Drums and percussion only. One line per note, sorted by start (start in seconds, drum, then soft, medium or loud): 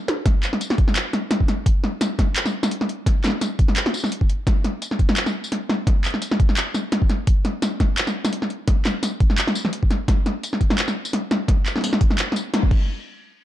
0.08 snare medium
0.08 closed hi-hat soft
0.26 kick loud
0.26 snare medium
0.26 closed hi-hat medium
0.43 clap medium
0.43 closed hi-hat soft
0.43 tambourine soft
0.53 snare medium
0.61 closed hi-hat medium
0.61 tambourine medium
0.70 snare medium
0.78 kick loud
0.78 closed hi-hat soft
0.88 snare medium
0.96 clap loud
0.96 closed hi-hat medium
1.13 snare medium
1.13 closed hi-hat soft
1.31 snare medium
1.31 closed hi-hat medium
1.40 kick medium
1.48 snare medium
1.48 closed hi-hat soft
1.66 kick loud
1.66 closed hi-hat medium
1.84 snare medium
2.01 snare medium
2.01 closed hi-hat medium
2.01 tambourine medium
2.19 kick medium
2.19 snare medium
2.19 closed hi-hat soft
2.36 clap loud
2.36 closed hi-hat medium
2.46 snare medium
2.46 tambourine soft
2.63 snare medium
2.63 tambourine medium
2.71 closed hi-hat medium
2.81 snare medium
2.89 closed hi-hat soft
3.06 kick loud
3.06 snare medium
3.06 closed hi-hat medium
3.24 clap medium
3.24 snare medium
3.24 closed hi-hat soft
3.24 tambourine soft
3.27 snare medium
3.30 snare medium
3.41 snare medium
3.41 closed hi-hat medium
3.41 tambourine medium
3.59 kick loud
3.59 closed hi-hat soft
3.68 snare medium
3.76 clap loud
3.76 closed hi-hat medium
3.86 snare medium
3.94 tambourine medium
3.97 tambourine medium
4.00 snare medium
4.00 tambourine soft
4.04 tambourine soft
4.06 tambourine soft
4.09 closed hi-hat medium
4.09 tambourine soft
4.21 kick medium
4.30 closed hi-hat soft
4.47 kick loud
4.47 snare medium
4.47 closed hi-hat medium
4.64 snare medium
4.64 closed hi-hat soft
4.82 closed hi-hat medium
4.82 tambourine medium
4.91 snare medium
4.99 kick medium
4.99 closed hi-hat soft
5.09 snare medium
5.17 clap loud
5.17 closed hi-hat medium
5.26 snare medium
5.26 tambourine soft
5.44 tambourine medium
5.52 snare medium
5.52 closed hi-hat medium
5.69 snare medium
5.87 kick loud
5.87 snare medium
5.87 closed hi-hat medium
6.05 clap medium
6.05 closed hi-hat soft
6.05 tambourine soft
6.08 closed hi-hat soft
6.14 snare medium
6.22 closed hi-hat medium
6.22 tambourine medium
6.31 snare medium
6.40 kick loud
6.40 closed hi-hat soft
6.49 snare soft
6.57 clap loud
6.57 closed hi-hat medium
6.74 snare soft
6.74 tambourine medium
6.92 snare medium
6.92 closed hi-hat medium
7.02 kick medium
7.10 snare medium
7.10 closed hi-hat soft
7.27 kick loud
7.27 closed hi-hat medium
7.45 snare soft
7.45 closed hi-hat soft
7.62 snare medium
7.62 closed hi-hat medium
7.62 tambourine medium
7.80 kick medium
7.80 snare medium
7.80 closed hi-hat soft
7.98 clap loud
7.98 closed hi-hat medium
8.07 snare medium
8.07 tambourine soft
8.25 snare medium
8.25 tambourine medium
8.33 closed hi-hat medium
8.42 snare medium
8.50 closed hi-hat soft
8.68 kick loud
8.68 snare medium
8.68 closed hi-hat medium
8.85 clap medium
8.85 snare medium
8.85 closed hi-hat soft
8.85 tambourine soft
9.03 snare medium
9.03 closed hi-hat medium
9.03 tambourine medium
9.20 kick loud
9.20 closed hi-hat soft
9.30 snare medium
9.38 clap loud
9.38 closed hi-hat medium
9.47 snare medium
9.55 tambourine medium
9.65 snare medium
9.73 closed hi-hat medium
9.83 kick medium
9.91 snare medium
9.91 closed hi-hat soft
10.08 kick loud
10.08 snare medium
10.08 closed hi-hat medium
10.26 snare medium
10.26 closed hi-hat soft
10.43 closed hi-hat medium
10.43 tambourine medium
10.53 snare medium
10.61 kick medium
10.61 closed hi-hat soft
10.70 snare medium
10.78 clap loud
10.78 closed hi-hat medium
10.88 snare medium
10.88 tambourine soft
11.05 tambourine medium
11.13 snare medium
11.13 closed hi-hat medium
11.31 snare medium
11.31 closed hi-hat soft
11.48 kick loud
11.48 snare medium
11.48 closed hi-hat medium
11.66 clap medium
11.66 closed hi-hat soft
11.66 tambourine soft
11.76 snare medium
11.78 snare soft
11.81 snare soft
11.84 snare soft
11.84 closed hi-hat medium
11.84 tambourine medium
11.87 snare soft
11.89 snare soft
11.93 snare medium
12.01 kick loud
12.01 closed hi-hat soft
12.10 snare medium
12.18 clap loud
12.18 closed hi-hat medium
12.32 snare medium
12.36 closed hi-hat soft
12.36 tambourine medium
12.54 snare medium
12.54 closed hi-hat medium
12.63 kick medium
12.71 kick loud
12.71 crash medium